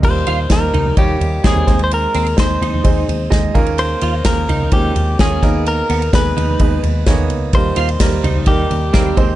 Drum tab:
CC |x---------------|----------------|----------------|----------------|
RD |--x-x-x-x-x-x-xx|x-xxx-x-x-x-x-xx|x-x-x-x-x-x-x-x-|x-xxx-x-x-x-x-x-|
SD |----o-------o-o-|----o-------o---|----o-------o-o-|----o-------o---|
FT |------oo--o--o--|------oo--o--o--|------oo--o-----|------oo--o--o--|
BD |o---o---o---o-o-|----o---o---o-o-|----o---o---o-o-|----o---o---o---|

CC |----------------|
RD |x-xxx-x-x-x-x-x-|
SD |----o-------o---|
FT |------oo--o-----|
BD |o---o---o---o-o-|